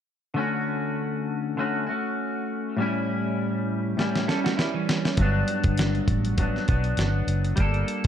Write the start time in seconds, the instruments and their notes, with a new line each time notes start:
0.34 clean electric guitar D3 A3 C#4
0.40 clean electric guitar F#4
1.57 clean electric guitar D3 A3 C#4 F#4
1.87 clean electric guitar A3 C#4 F#4
2.77 clean electric guitar A2 G3 C#4
2.82 clean electric guitar E4
3.97 clean electric guitar A2 G3 C#4 E4, snare
4.16 snare
4.28 clean electric guitar G3 C#4 E4 A4, snare
4.44 clean electric guitar A3 F#4, snare
4.57 clean electric guitar G3 E4, snare
4.74 clean electric guitar E3 C#4
4.89 snare
5.05 snare
5.17 fingered electric bass G1, clean electric guitar G2 F#3, kick, closed hi-hat
5.21 clean electric guitar B3 D4
5.48 closed hi-hat
5.64 fingered electric bass G1, kick, closed hi-hat
5.78 snare, closed hi-hat
5.95 closed hi-hat
6.08 fingered electric bass A1, kick, closed hi-hat
6.25 closed hi-hat
6.37 clean electric guitar G2 F#3 B3 D4, kick, closed hi-hat
6.56 snare
6.68 fingered electric bass B1, clean electric guitar F#3 B3 D4, kick, closed hi-hat
6.84 closed hi-hat
6.97 fingered electric bass G1, snare, closed hi-hat
7.27 fingered electric bass F#1, closed hi-hat
7.44 closed hi-hat
7.56 fingered electric bass G1, clean electric guitar G3 A#3, kick, closed hi-hat
7.60 clean electric guitar D4 A4
7.74 closed hi-hat
7.88 closed hi-hat